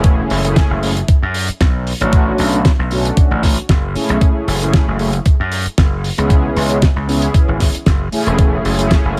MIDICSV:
0, 0, Header, 1, 5, 480
1, 0, Start_track
1, 0, Key_signature, 3, "minor"
1, 0, Tempo, 521739
1, 38, Time_signature, 4, 2, 24, 8
1, 8462, End_track
2, 0, Start_track
2, 0, Title_t, "Analog polysynth"
2, 0, Program_c, 0, 90
2, 0, Note_on_c, 0, 57, 95
2, 0, Note_on_c, 0, 61, 87
2, 0, Note_on_c, 0, 64, 82
2, 0, Note_on_c, 0, 68, 99
2, 370, Note_off_c, 0, 57, 0
2, 372, Note_off_c, 0, 61, 0
2, 375, Note_off_c, 0, 64, 0
2, 378, Note_off_c, 0, 68, 0
2, 398, Note_on_c, 0, 57, 86
2, 401, Note_on_c, 0, 61, 79
2, 404, Note_on_c, 0, 64, 78
2, 407, Note_on_c, 0, 68, 94
2, 727, Note_off_c, 0, 57, 0
2, 729, Note_off_c, 0, 61, 0
2, 730, Note_off_c, 0, 64, 0
2, 732, Note_off_c, 0, 68, 0
2, 750, Note_on_c, 0, 57, 83
2, 753, Note_on_c, 0, 61, 75
2, 756, Note_on_c, 0, 64, 75
2, 759, Note_on_c, 0, 68, 87
2, 832, Note_off_c, 0, 57, 0
2, 833, Note_off_c, 0, 61, 0
2, 835, Note_off_c, 0, 64, 0
2, 836, Note_off_c, 0, 68, 0
2, 1841, Note_on_c, 0, 57, 94
2, 1845, Note_on_c, 0, 61, 90
2, 1848, Note_on_c, 0, 62, 86
2, 1851, Note_on_c, 0, 66, 113
2, 2293, Note_off_c, 0, 57, 0
2, 2295, Note_off_c, 0, 61, 0
2, 2296, Note_off_c, 0, 62, 0
2, 2297, Note_off_c, 0, 66, 0
2, 2319, Note_on_c, 0, 57, 99
2, 2323, Note_on_c, 0, 61, 88
2, 2327, Note_on_c, 0, 62, 93
2, 2328, Note_on_c, 0, 66, 108
2, 2391, Note_off_c, 0, 57, 0
2, 2393, Note_off_c, 0, 61, 0
2, 2395, Note_off_c, 0, 62, 0
2, 2395, Note_off_c, 0, 66, 0
2, 2667, Note_on_c, 0, 57, 75
2, 2671, Note_on_c, 0, 61, 69
2, 2679, Note_on_c, 0, 62, 69
2, 2685, Note_on_c, 0, 66, 79
2, 3250, Note_off_c, 0, 57, 0
2, 3252, Note_off_c, 0, 61, 0
2, 3255, Note_off_c, 0, 62, 0
2, 3259, Note_off_c, 0, 66, 0
2, 3625, Note_on_c, 0, 57, 90
2, 3630, Note_on_c, 0, 61, 85
2, 3636, Note_on_c, 0, 64, 82
2, 3644, Note_on_c, 0, 68, 99
2, 4209, Note_off_c, 0, 57, 0
2, 4211, Note_off_c, 0, 61, 0
2, 4214, Note_off_c, 0, 64, 0
2, 4218, Note_off_c, 0, 68, 0
2, 4240, Note_on_c, 0, 57, 85
2, 4245, Note_on_c, 0, 61, 74
2, 4246, Note_on_c, 0, 64, 77
2, 4249, Note_on_c, 0, 68, 94
2, 4568, Note_off_c, 0, 57, 0
2, 4570, Note_off_c, 0, 61, 0
2, 4571, Note_off_c, 0, 64, 0
2, 4573, Note_off_c, 0, 68, 0
2, 4592, Note_on_c, 0, 57, 86
2, 4595, Note_on_c, 0, 61, 75
2, 4599, Note_on_c, 0, 64, 77
2, 4602, Note_on_c, 0, 68, 92
2, 4673, Note_off_c, 0, 57, 0
2, 4674, Note_off_c, 0, 61, 0
2, 4676, Note_off_c, 0, 64, 0
2, 4678, Note_off_c, 0, 68, 0
2, 5678, Note_on_c, 0, 59, 100
2, 5682, Note_on_c, 0, 61, 96
2, 5684, Note_on_c, 0, 64, 90
2, 5685, Note_on_c, 0, 68, 114
2, 6131, Note_off_c, 0, 59, 0
2, 6133, Note_off_c, 0, 61, 0
2, 6134, Note_off_c, 0, 64, 0
2, 6135, Note_off_c, 0, 68, 0
2, 6157, Note_on_c, 0, 59, 100
2, 6159, Note_on_c, 0, 61, 97
2, 6163, Note_on_c, 0, 64, 89
2, 6167, Note_on_c, 0, 68, 111
2, 6230, Note_off_c, 0, 59, 0
2, 6231, Note_off_c, 0, 61, 0
2, 6233, Note_off_c, 0, 64, 0
2, 6234, Note_off_c, 0, 68, 0
2, 6505, Note_on_c, 0, 59, 74
2, 6511, Note_on_c, 0, 61, 68
2, 6518, Note_on_c, 0, 64, 70
2, 6523, Note_on_c, 0, 68, 82
2, 7089, Note_off_c, 0, 59, 0
2, 7092, Note_off_c, 0, 61, 0
2, 7095, Note_off_c, 0, 64, 0
2, 7097, Note_off_c, 0, 68, 0
2, 7465, Note_on_c, 0, 57, 88
2, 7471, Note_on_c, 0, 61, 84
2, 7477, Note_on_c, 0, 64, 80
2, 7484, Note_on_c, 0, 68, 100
2, 8048, Note_off_c, 0, 57, 0
2, 8051, Note_off_c, 0, 61, 0
2, 8055, Note_off_c, 0, 64, 0
2, 8058, Note_off_c, 0, 68, 0
2, 8076, Note_on_c, 0, 57, 86
2, 8081, Note_on_c, 0, 61, 80
2, 8082, Note_on_c, 0, 64, 77
2, 8085, Note_on_c, 0, 68, 96
2, 8406, Note_off_c, 0, 57, 0
2, 8408, Note_off_c, 0, 61, 0
2, 8409, Note_off_c, 0, 64, 0
2, 8410, Note_off_c, 0, 68, 0
2, 8431, Note_on_c, 0, 57, 89
2, 8434, Note_on_c, 0, 61, 77
2, 8462, Note_off_c, 0, 57, 0
2, 8462, Note_off_c, 0, 61, 0
2, 8462, End_track
3, 0, Start_track
3, 0, Title_t, "Slap bass"
3, 0, Program_c, 1, 36
3, 0, Note_on_c, 1, 28, 106
3, 208, Note_off_c, 1, 28, 0
3, 278, Note_on_c, 1, 30, 96
3, 567, Note_off_c, 1, 30, 0
3, 646, Note_on_c, 1, 30, 89
3, 929, Note_off_c, 1, 30, 0
3, 1127, Note_on_c, 1, 42, 91
3, 1362, Note_off_c, 1, 42, 0
3, 1477, Note_on_c, 1, 35, 86
3, 1766, Note_off_c, 1, 35, 0
3, 1848, Note_on_c, 1, 33, 105
3, 2130, Note_off_c, 1, 33, 0
3, 2199, Note_on_c, 1, 35, 92
3, 2487, Note_off_c, 1, 35, 0
3, 2567, Note_on_c, 1, 35, 89
3, 2849, Note_off_c, 1, 35, 0
3, 3045, Note_on_c, 1, 33, 96
3, 3281, Note_off_c, 1, 33, 0
3, 3396, Note_on_c, 1, 30, 87
3, 3632, Note_off_c, 1, 30, 0
3, 3766, Note_on_c, 1, 35, 92
3, 3835, Note_off_c, 1, 35, 0
3, 4116, Note_on_c, 1, 30, 93
3, 4406, Note_off_c, 1, 30, 0
3, 4487, Note_on_c, 1, 30, 85
3, 4769, Note_off_c, 1, 30, 0
3, 4968, Note_on_c, 1, 42, 89
3, 5201, Note_off_c, 1, 42, 0
3, 5317, Note_on_c, 1, 30, 89
3, 5606, Note_off_c, 1, 30, 0
3, 5685, Note_on_c, 1, 37, 102
3, 5968, Note_off_c, 1, 37, 0
3, 6036, Note_on_c, 1, 37, 94
3, 6326, Note_off_c, 1, 37, 0
3, 6403, Note_on_c, 1, 37, 86
3, 6687, Note_off_c, 1, 37, 0
3, 6885, Note_on_c, 1, 32, 96
3, 7117, Note_off_c, 1, 32, 0
3, 7235, Note_on_c, 1, 30, 85
3, 7471, Note_off_c, 1, 30, 0
3, 7603, Note_on_c, 1, 28, 106
3, 7887, Note_off_c, 1, 28, 0
3, 7955, Note_on_c, 1, 30, 94
3, 8246, Note_off_c, 1, 30, 0
3, 8324, Note_on_c, 1, 30, 86
3, 8462, Note_off_c, 1, 30, 0
3, 8462, End_track
4, 0, Start_track
4, 0, Title_t, "Muted slap bass strokes"
4, 1368, Note_on_c, 9, 29, 41
4, 1460, Note_off_c, 9, 29, 0
4, 3286, Note_on_c, 9, 29, 41
4, 3378, Note_off_c, 9, 29, 0
4, 3638, Note_on_c, 9, 29, 42
4, 3730, Note_off_c, 9, 29, 0
4, 4836, Note_on_c, 9, 29, 42
4, 4928, Note_off_c, 9, 29, 0
4, 5207, Note_on_c, 9, 29, 42
4, 5299, Note_off_c, 9, 29, 0
4, 7123, Note_on_c, 9, 29, 43
4, 7215, Note_off_c, 9, 29, 0
4, 7476, Note_on_c, 9, 29, 43
4, 7568, Note_off_c, 9, 29, 0
4, 8462, End_track
5, 0, Start_track
5, 0, Title_t, "Drums"
5, 34, Note_on_c, 9, 42, 69
5, 38, Note_on_c, 9, 36, 127
5, 126, Note_off_c, 9, 42, 0
5, 130, Note_off_c, 9, 36, 0
5, 277, Note_on_c, 9, 46, 108
5, 369, Note_off_c, 9, 46, 0
5, 411, Note_on_c, 9, 42, 88
5, 503, Note_off_c, 9, 42, 0
5, 518, Note_on_c, 9, 36, 126
5, 522, Note_on_c, 9, 38, 127
5, 522, Note_on_c, 9, 42, 69
5, 610, Note_off_c, 9, 36, 0
5, 614, Note_off_c, 9, 38, 0
5, 614, Note_off_c, 9, 42, 0
5, 762, Note_on_c, 9, 46, 110
5, 854, Note_off_c, 9, 46, 0
5, 890, Note_on_c, 9, 42, 72
5, 982, Note_off_c, 9, 42, 0
5, 997, Note_on_c, 9, 36, 127
5, 997, Note_on_c, 9, 42, 67
5, 1089, Note_off_c, 9, 36, 0
5, 1089, Note_off_c, 9, 42, 0
5, 1236, Note_on_c, 9, 46, 116
5, 1328, Note_off_c, 9, 46, 0
5, 1365, Note_on_c, 9, 42, 83
5, 1457, Note_off_c, 9, 42, 0
5, 1478, Note_on_c, 9, 36, 127
5, 1479, Note_on_c, 9, 38, 123
5, 1479, Note_on_c, 9, 42, 71
5, 1570, Note_off_c, 9, 36, 0
5, 1571, Note_off_c, 9, 38, 0
5, 1571, Note_off_c, 9, 42, 0
5, 1719, Note_on_c, 9, 46, 98
5, 1811, Note_off_c, 9, 46, 0
5, 1847, Note_on_c, 9, 42, 72
5, 1939, Note_off_c, 9, 42, 0
5, 1956, Note_on_c, 9, 42, 66
5, 1958, Note_on_c, 9, 36, 119
5, 2048, Note_off_c, 9, 42, 0
5, 2050, Note_off_c, 9, 36, 0
5, 2193, Note_on_c, 9, 46, 117
5, 2285, Note_off_c, 9, 46, 0
5, 2329, Note_on_c, 9, 42, 79
5, 2421, Note_off_c, 9, 42, 0
5, 2437, Note_on_c, 9, 36, 123
5, 2442, Note_on_c, 9, 38, 127
5, 2442, Note_on_c, 9, 42, 72
5, 2529, Note_off_c, 9, 36, 0
5, 2534, Note_off_c, 9, 38, 0
5, 2534, Note_off_c, 9, 42, 0
5, 2675, Note_on_c, 9, 46, 94
5, 2767, Note_off_c, 9, 46, 0
5, 2808, Note_on_c, 9, 42, 78
5, 2900, Note_off_c, 9, 42, 0
5, 2917, Note_on_c, 9, 36, 127
5, 2922, Note_on_c, 9, 42, 64
5, 3009, Note_off_c, 9, 36, 0
5, 3014, Note_off_c, 9, 42, 0
5, 3157, Note_on_c, 9, 36, 62
5, 3157, Note_on_c, 9, 38, 56
5, 3159, Note_on_c, 9, 46, 116
5, 3249, Note_off_c, 9, 36, 0
5, 3249, Note_off_c, 9, 38, 0
5, 3251, Note_off_c, 9, 46, 0
5, 3288, Note_on_c, 9, 42, 70
5, 3380, Note_off_c, 9, 42, 0
5, 3396, Note_on_c, 9, 36, 124
5, 3397, Note_on_c, 9, 42, 61
5, 3401, Note_on_c, 9, 38, 115
5, 3488, Note_off_c, 9, 36, 0
5, 3489, Note_off_c, 9, 42, 0
5, 3493, Note_off_c, 9, 38, 0
5, 3638, Note_on_c, 9, 46, 93
5, 3730, Note_off_c, 9, 46, 0
5, 3763, Note_on_c, 9, 42, 79
5, 3855, Note_off_c, 9, 42, 0
5, 3876, Note_on_c, 9, 36, 125
5, 3876, Note_on_c, 9, 42, 71
5, 3968, Note_off_c, 9, 36, 0
5, 3968, Note_off_c, 9, 42, 0
5, 4121, Note_on_c, 9, 46, 117
5, 4213, Note_off_c, 9, 46, 0
5, 4247, Note_on_c, 9, 42, 81
5, 4339, Note_off_c, 9, 42, 0
5, 4357, Note_on_c, 9, 36, 124
5, 4357, Note_on_c, 9, 42, 70
5, 4360, Note_on_c, 9, 38, 121
5, 4449, Note_off_c, 9, 36, 0
5, 4449, Note_off_c, 9, 42, 0
5, 4452, Note_off_c, 9, 38, 0
5, 4593, Note_on_c, 9, 46, 93
5, 4685, Note_off_c, 9, 46, 0
5, 4721, Note_on_c, 9, 42, 75
5, 4813, Note_off_c, 9, 42, 0
5, 4835, Note_on_c, 9, 42, 63
5, 4837, Note_on_c, 9, 36, 116
5, 4927, Note_off_c, 9, 42, 0
5, 4929, Note_off_c, 9, 36, 0
5, 5075, Note_on_c, 9, 46, 109
5, 5167, Note_off_c, 9, 46, 0
5, 5205, Note_on_c, 9, 42, 67
5, 5297, Note_off_c, 9, 42, 0
5, 5316, Note_on_c, 9, 38, 124
5, 5317, Note_on_c, 9, 36, 124
5, 5318, Note_on_c, 9, 42, 70
5, 5408, Note_off_c, 9, 38, 0
5, 5409, Note_off_c, 9, 36, 0
5, 5410, Note_off_c, 9, 42, 0
5, 5560, Note_on_c, 9, 46, 99
5, 5652, Note_off_c, 9, 46, 0
5, 5687, Note_on_c, 9, 42, 72
5, 5779, Note_off_c, 9, 42, 0
5, 5797, Note_on_c, 9, 36, 119
5, 5798, Note_on_c, 9, 42, 70
5, 5889, Note_off_c, 9, 36, 0
5, 5890, Note_off_c, 9, 42, 0
5, 6040, Note_on_c, 9, 46, 106
5, 6132, Note_off_c, 9, 46, 0
5, 6160, Note_on_c, 9, 42, 84
5, 6252, Note_off_c, 9, 42, 0
5, 6274, Note_on_c, 9, 42, 66
5, 6277, Note_on_c, 9, 36, 122
5, 6282, Note_on_c, 9, 38, 111
5, 6366, Note_off_c, 9, 42, 0
5, 6369, Note_off_c, 9, 36, 0
5, 6374, Note_off_c, 9, 38, 0
5, 6521, Note_on_c, 9, 46, 98
5, 6613, Note_off_c, 9, 46, 0
5, 6642, Note_on_c, 9, 42, 85
5, 6734, Note_off_c, 9, 42, 0
5, 6756, Note_on_c, 9, 36, 113
5, 6759, Note_on_c, 9, 42, 77
5, 6848, Note_off_c, 9, 36, 0
5, 6851, Note_off_c, 9, 42, 0
5, 6991, Note_on_c, 9, 38, 55
5, 6995, Note_on_c, 9, 46, 109
5, 6996, Note_on_c, 9, 36, 63
5, 7083, Note_off_c, 9, 38, 0
5, 7087, Note_off_c, 9, 46, 0
5, 7088, Note_off_c, 9, 36, 0
5, 7128, Note_on_c, 9, 42, 80
5, 7220, Note_off_c, 9, 42, 0
5, 7233, Note_on_c, 9, 42, 68
5, 7234, Note_on_c, 9, 38, 112
5, 7236, Note_on_c, 9, 36, 114
5, 7325, Note_off_c, 9, 42, 0
5, 7326, Note_off_c, 9, 38, 0
5, 7328, Note_off_c, 9, 36, 0
5, 7474, Note_on_c, 9, 46, 101
5, 7566, Note_off_c, 9, 46, 0
5, 7603, Note_on_c, 9, 42, 71
5, 7695, Note_off_c, 9, 42, 0
5, 7713, Note_on_c, 9, 42, 65
5, 7716, Note_on_c, 9, 36, 113
5, 7805, Note_off_c, 9, 42, 0
5, 7808, Note_off_c, 9, 36, 0
5, 7958, Note_on_c, 9, 46, 110
5, 8050, Note_off_c, 9, 46, 0
5, 8085, Note_on_c, 9, 42, 78
5, 8177, Note_off_c, 9, 42, 0
5, 8194, Note_on_c, 9, 42, 63
5, 8196, Note_on_c, 9, 36, 115
5, 8204, Note_on_c, 9, 38, 127
5, 8286, Note_off_c, 9, 42, 0
5, 8288, Note_off_c, 9, 36, 0
5, 8296, Note_off_c, 9, 38, 0
5, 8462, End_track
0, 0, End_of_file